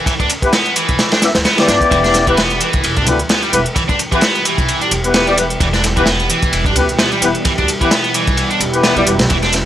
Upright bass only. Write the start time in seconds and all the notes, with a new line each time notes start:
0.06 muted upright bass stroke
0.20 D2
0.89 B1
1.35 D2
1.68 G1
1.91 E1
2.74 B1
2.84 E1
3.07 D2
3.53 E1
3.76 muted upright bass stroke
3.89 D2
4.58 B1
4.91 E1
5.60 E1
6.43 B1
6.53 E1
6.76 D2
7.22 E1
7.45 muted upright bass stroke
7.59 D2
8.28 B1
8.60 E1
8.96 B1
9.06 E1
9.19 B1
9.31 E1